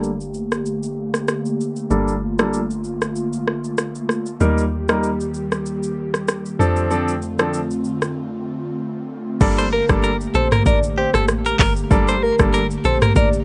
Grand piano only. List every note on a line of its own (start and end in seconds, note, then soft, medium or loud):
1.90 2.12 G3 medium
1.90 2.12 A#3 medium
1.90 2.12 D4 medium
1.90 2.12 A4 loud
2.39 2.58 G3 medium
2.39 2.58 A#3 medium
2.39 2.58 D4 medium
2.39 2.59 A4 medium
4.40 4.62 G3 medium
4.40 4.62 A#3 medium
4.40 4.62 D#4 medium
4.40 4.62 A#4 loud
4.89 5.08 G3 medium
4.89 5.08 A#3 medium
4.89 5.08 D#4 medium
4.89 5.09 A#4 medium
6.59 6.88 F3 medium
6.59 6.88 C4 medium
6.59 6.89 D4 medium
6.59 6.89 A4 loud
6.90 7.12 F3 medium
6.90 7.12 C4 medium
6.90 7.12 D4 medium
6.90 7.12 A4 loud
7.39 7.58 F3 medium
7.39 7.58 C4 medium
7.39 7.58 D4 medium
7.39 7.59 A4 medium
9.41 9.62 G3 loud
9.41 9.62 A#3 medium
9.41 9.62 D4 medium
9.41 9.62 A4 loud
9.89 10.08 G3 medium
9.89 10.08 A#3 medium
9.89 10.08 D4 medium
9.89 10.09 A4 medium
11.91 12.12 G3 loud
11.91 12.12 A#3 medium
11.91 12.12 D4 medium
11.91 12.12 A4 loud
12.39 12.58 G3 medium
12.39 12.58 A#3 medium
12.39 12.59 D4 medium
12.39 12.59 A4 medium